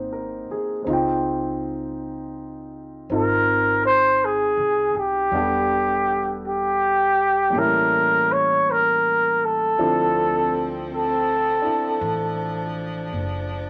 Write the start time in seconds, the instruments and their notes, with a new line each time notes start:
Already playing: upright bass G#1, grand piano G#3 A#3 C4 D#4 F#4 C5
0.13 grand piano A#4
0.50 grand piano G#4, muted upright bass stroke
0.82 grand piano G#3 C4
0.87 upright bass C#2, grand piano D#4 F4
0.93 grand piano G5
3.10 upright bass G#1, grand piano C4 D#4 F4
3.14 flugelhorn A#4
3.85 flugelhorn C5
4.25 flugelhorn G#4
4.57 upright bass C2
4.94 upright bass B1
4.98 flugelhorn G4
5.32 upright bass E1, grand piano G3 B3 D4
5.36 grand piano A4 F#5
6.48 flugelhorn G4
7.50 grand piano G3 A#3
7.54 upright bass A1, grand piano C#4 E4, flugelhorn A#4
7.61 grand piano A3
8.32 flugelhorn C#5
8.71 flugelhorn A#4
9.45 flugelhorn A4
9.78 upright bass D2, grand piano F3 C4 D4 E4 A4, saxophone section F3 C4
10.94 flugelhorn A4
11.62 grand piano D4 E4 A4, muted upright bass stroke
12.00 upright bass A1, saxophone section D4
13.13 upright bass F#1